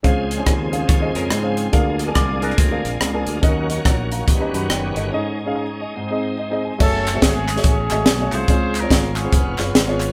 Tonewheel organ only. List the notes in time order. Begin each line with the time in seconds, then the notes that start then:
0.04 C#3 F3 G#3 C4 G#4
1.74 A#3 D4
3.43 D#3 F#3 A#3 C#4 F#4
4.27 G3 B3 F#4
5.12 G#3 D#4
5.96 G#3 C4
6.80 F#3 A3 C#4
8.47 C4 F4
9.32 B3